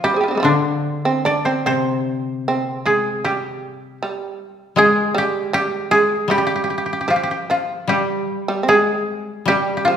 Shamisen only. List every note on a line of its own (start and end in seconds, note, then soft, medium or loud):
0.04 0.36 G3 medium
0.14 0.23 G#4 soft
0.14 0.20 C5 soft
0.21 0.28 F4 soft
0.21 0.31 G4 soft
0.28 0.45 C4 soft
0.28 0.35 D4 soft
0.35 0.42 G3 soft
0.35 0.40 G#3 soft
0.40 1.01 D3 medium
0.40 0.55 F3 soft
1.05 1.25 C4 medium
1.25 1.45 D4 medium
1.46 1.65 C4 soft
1.66 2.43 C4 medium
2.48 2.84 C4 medium
2.86 3.22 G#3 soft
3.24 3.98 G3 medium
4.03 4.37 G3 soft
4.77 5.12 G#3 medium
5.15 5.50 G3 medium
5.53 5.89 G3 medium
5.91 6.27 G#3 medium
6.30 7.45 G3 medium
7.08 7.46 F3 medium
7.50 7.87 F3 soft
7.90 8.45 G3 medium
8.48 8.60 G3 medium
8.63 8.69 C4 soft
8.69 9.43 G#3 medium
9.49 9.84 G3 medium
9.88 9.97 F3 medium